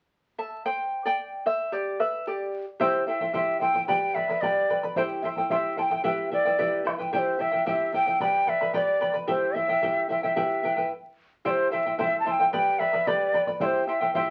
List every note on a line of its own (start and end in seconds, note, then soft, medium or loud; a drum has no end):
0.39 0.63 E5 medium
0.39 0.65 A5 medium
0.66 1.03 C5 medium
0.66 1.05 G5 medium
1.06 1.43 D5 medium
1.06 1.47 G5 medium
1.46 1.71 C5 soft
1.46 1.71 E5 medium
1.72 1.98 G4 medium
1.72 2.01 D5 medium
2.00 2.25 B4 soft
2.00 2.25 E5 medium
2.27 2.65 G4 soft
2.27 2.65 D5 soft
2.80 3.07 E4 medium
2.80 3.07 G4 medium
2.80 3.07 C5 medium
2.80 3.06 C5 medium
2.80 3.05 E5 medium
2.80 3.07 G5 medium
2.80 bombo low medium
3.07 3.21 E4 medium
3.07 3.20 C5 soft
3.07 3.21 E5 soft
3.07 3.33 E5 medium
3.07 3.20 G5 soft
3.21 3.33 E4 soft
3.21 3.33 C5 soft
3.21 3.34 G5 soft
3.21 bombo low soft
3.33 3.60 E4 medium
3.33 3.61 G4 medium
3.33 3.60 C5 medium
3.33 3.59 E5 medium
3.33 3.60 E5 medium
3.33 3.61 G5 medium
3.33 bombo low medium
3.60 3.75 E4 soft
3.60 3.74 C5 soft
3.60 3.74 E5 soft
3.60 3.86 G5 medium
3.60 3.73 G5 medium
3.60 bombo low medium
3.74 3.88 E4 soft
3.74 3.88 C5 soft
3.74 3.87 G5 soft
3.74 bombo low medium
3.88 4.15 G4 medium
3.88 4.14 B4 medium
3.88 4.15 D5 medium
3.88 4.16 G5 medium
3.88 4.14 G5 medium
3.88 4.15 B5 medium
3.88 bombo low medium
4.15 4.29 B4 soft
4.15 4.29 D5 medium
4.15 4.43 E5 medium
4.15 4.29 G5 soft
4.15 4.28 B5 medium
4.15 bombo low soft
4.29 4.42 B4 soft
4.29 4.42 D5 soft
4.29 4.43 B5 soft
4.29 bombo low soft
4.41 4.70 G4 medium
4.41 4.69 B4 medium
4.41 4.83 D5 medium
4.41 4.69 D5 medium
4.41 4.69 G5 medium
4.41 4.70 B5 medium
4.41 bombo low medium
4.70 4.83 B4 medium
4.70 4.83 D5 soft
4.70 4.83 G5 soft
4.70 4.82 B5 medium
4.70 bombo low soft
4.83 4.97 B4 soft
4.83 4.97 D5 soft
4.83 4.96 B5 soft
4.83 bombo low soft
4.96 5.23 E4 medium
4.96 5.24 G4 medium
4.96 5.02 C5 medium
4.96 5.24 C5 medium
4.96 5.23 E5 medium
4.96 5.24 G5 medium
4.96 bombo low medium
5.22 5.38 E4 soft
5.22 5.37 C5 medium
5.22 5.29 E5 medium
5.22 5.37 E5 soft
5.22 5.36 G5 soft
5.22 bombo low soft
5.37 5.50 E4 soft
5.37 5.50 C5 soft
5.37 5.50 G5 soft
5.37 bombo low soft
5.50 5.77 E4 medium
5.50 5.78 G4 medium
5.50 5.77 C5 medium
5.50 5.76 E5 medium
5.50 5.80 E5 medium
5.50 5.78 G5 medium
5.50 bombo low medium
5.77 5.91 E4 medium
5.77 5.90 C5 medium
5.77 5.91 E5 soft
5.77 5.90 G5 medium
5.77 5.83 A5 medium
5.77 bombo low soft
5.82 6.04 G5 medium
5.91 6.02 E4 soft
5.91 6.04 C5 soft
5.91 6.04 G5 soft
5.91 bombo low soft
6.04 6.31 E4 medium
6.04 6.31 G4 medium
6.04 6.31 B4 medium
6.04 6.30 E5 medium
6.04 6.31 G5 medium
6.04 bombo low medium
6.31 6.45 E4 soft
6.31 6.45 B4 soft
6.31 6.83 D5 medium
6.31 6.45 E5 soft
6.31 6.44 G5 soft
6.31 bombo low soft
6.45 6.58 E4 soft
6.45 6.58 B4 soft
6.45 6.58 G5 medium
6.45 bombo low soft
6.59 6.84 E4 medium
6.59 6.86 G4 medium
6.59 6.84 B4 medium
6.59 6.83 E5 medium
6.59 6.85 G5 medium
6.59 bombo low medium
6.85 6.99 E4 medium
6.85 6.98 B4 soft
6.85 6.99 E5 soft
6.85 6.97 G5 soft
6.85 bombo rim soft
6.85 bombo low soft
6.99 7.12 E4 soft
6.99 7.13 B4 soft
6.99 7.12 G5 soft
6.99 bombo low medium
7.13 7.38 E4 medium
7.13 7.40 G4 medium
7.13 7.39 C5 medium
7.13 7.20 D5 medium
7.13 7.38 E5 medium
7.13 7.39 G5 medium
7.13 bombo low medium
7.19 7.43 C5 medium
7.39 7.52 E4 soft
7.39 7.52 C5 medium
7.39 7.53 E5 soft
7.39 7.67 E5 medium
7.39 7.50 G5 medium
7.39 bombo low soft
7.52 7.65 E4 soft
7.52 7.65 C5 soft
7.52 7.66 G5 soft
7.52 bombo low soft
7.66 7.93 E4 medium
7.66 7.94 G4 medium
7.66 7.93 C5 medium
7.66 7.92 E5 medium
7.66 7.93 E5 medium
7.66 7.93 G5 medium
7.66 bombo low medium
7.93 8.07 E4 soft
7.93 8.06 C5 medium
7.93 8.07 E5 soft
7.93 8.05 G5 medium
7.93 8.20 G5 medium
7.93 bombo low soft
8.06 8.21 E4 soft
8.06 8.21 C5 soft
8.06 8.20 G5 soft
8.06 bombo low medium
8.20 8.48 G4 medium
8.20 8.46 B4 medium
8.20 8.47 D5 medium
8.20 8.46 G5 medium
8.20 8.50 G5 medium
8.20 8.47 B5 medium
8.20 bombo low medium
8.47 8.61 B4 medium
8.47 8.60 D5 soft
8.47 8.75 E5 medium
8.47 8.61 G5 medium
8.47 8.60 B5 medium
8.47 bombo low soft
8.61 8.73 B4 soft
8.61 8.73 D5 soft
8.61 8.74 B5 soft
8.61 bombo low medium
8.74 9.01 G4 medium
8.74 9.00 B4 medium
8.74 9.00 D5 medium
8.74 9.13 D5 medium
8.74 9.00 G5 medium
8.74 9.01 B5 medium
8.74 bombo low medium
9.01 9.14 B4 soft
9.01 9.13 D5 medium
9.01 9.15 G5 medium
9.01 9.13 B5 medium
9.01 bombo low medium
9.14 9.28 B4 soft
9.14 9.28 D5 soft
9.14 9.28 B5 medium
9.14 bombo low soft
9.27 9.54 E4 medium
9.27 9.55 G4 medium
9.27 9.55 C5 medium
9.27 9.56 C5 medium
9.27 9.53 E5 medium
9.27 9.55 G5 medium
9.27 bombo low medium
9.54 9.69 E4 soft
9.54 9.68 C5 soft
9.54 9.69 E5 soft
9.54 10.10 E5 medium
9.54 9.68 G5 soft
9.54 bombo low medium
9.69 9.82 E4 soft
9.69 9.82 C5 soft
9.69 9.82 G5 soft
9.69 bombo low soft
9.82 10.08 E4 medium
9.82 10.10 G4 medium
9.82 10.09 C5 medium
9.82 10.08 E5 medium
9.82 10.09 G5 medium
9.82 bombo low medium
10.09 10.23 E4 soft
10.09 10.23 C5 soft
10.09 10.23 E5 soft
10.09 10.23 E5 medium
10.09 10.22 G5 medium
10.09 bombo low soft
10.23 10.35 E4 soft
10.23 10.36 C5 soft
10.23 10.87 E5 medium
10.23 10.36 G5 soft
10.23 bombo low medium
10.36 10.63 E4 medium
10.36 10.64 G4 medium
10.36 10.63 B4 medium
10.36 10.62 E5 medium
10.36 10.64 G5 medium
10.36 bombo low medium
10.63 10.77 E4 soft
10.63 10.77 B4 soft
10.63 10.77 E5 soft
10.63 10.75 G5 medium
10.63 bombo low medium
10.77 10.91 E4 soft
10.77 10.91 B4 soft
10.77 10.91 G5 soft
10.77 bombo low soft
11.45 11.71 E4 medium
11.45 11.72 G4 medium
11.45 11.71 C5 medium
11.45 11.51 D5 medium
11.45 11.70 E5 medium
11.45 11.72 G5 medium
11.45 bombo low medium
11.50 11.71 C5 medium
11.71 11.86 E4 medium
11.71 11.86 C5 medium
11.71 11.85 E5 soft
11.71 11.97 E5 medium
11.71 11.85 G5 soft
11.71 bombo low soft
11.86 11.98 E4 soft
11.86 11.98 C5 soft
11.86 11.99 G5 soft
11.86 bombo low soft
11.99 12.25 E4 medium
11.99 12.26 G4 medium
11.99 12.25 C5 medium
11.99 12.25 E5 medium
11.99 12.18 E5 medium
11.99 12.26 G5 medium
11.99 bombo low medium
12.20 12.27 A5 medium
12.26 12.40 E4 soft
12.26 12.39 C5 medium
12.26 12.40 E5 soft
12.26 12.38 G5 medium
12.26 12.32 A5 medium
12.26 bombo low soft
12.31 12.52 G5 medium
12.40 12.53 E4 soft
12.40 12.52 C5 soft
12.40 12.52 G5 soft
12.40 bombo low soft
12.53 12.80 G4 medium
12.53 12.79 B4 medium
12.53 12.79 D5 medium
12.53 12.81 G5 medium
12.53 12.78 G5 medium
12.53 12.80 B5 medium
12.53 bombo low medium
12.79 12.93 B4 medium
12.79 12.93 D5 medium
12.79 13.09 E5 medium
12.79 12.94 G5 soft
12.79 12.92 B5 medium
12.79 bombo low soft
12.93 13.06 B4 soft
12.93 13.07 D5 soft
12.93 13.07 B5 soft
12.93 bombo low soft
13.07 13.34 G4 medium
13.07 13.33 B4 medium
13.07 13.48 D5 medium
13.07 13.33 D5 medium
13.07 13.33 G5 medium
13.07 13.34 B5 medium
13.07 bombo low medium
13.34 13.48 B4 medium
13.34 13.47 D5 medium
13.34 13.48 G5 soft
13.34 13.46 B5 medium
13.34 bombo low medium
13.47 13.61 B4 soft
13.47 13.61 D5 soft
13.47 13.61 B5 medium
13.47 bombo low medium
13.60 13.87 E4 medium
13.60 13.88 G4 medium
13.60 13.88 C5 medium
13.60 13.66 D5 medium
13.60 13.86 E5 medium
13.60 13.88 G5 medium
13.60 bombo low medium
13.65 13.86 C5 medium
13.87 14.01 E4 medium
13.87 14.01 C5 medium
13.87 14.02 E5 soft
13.87 14.13 E5 medium
13.87 14.00 G5 medium
14.01 14.14 E4 soft
14.01 14.14 C5 soft
14.01 14.15 G5 soft
14.01 bombo low soft
14.15 14.30 E4 medium
14.15 14.30 G4 medium
14.15 14.30 C5 medium
14.15 14.30 E5 medium
14.15 14.30 G5 medium
14.15 bombo low medium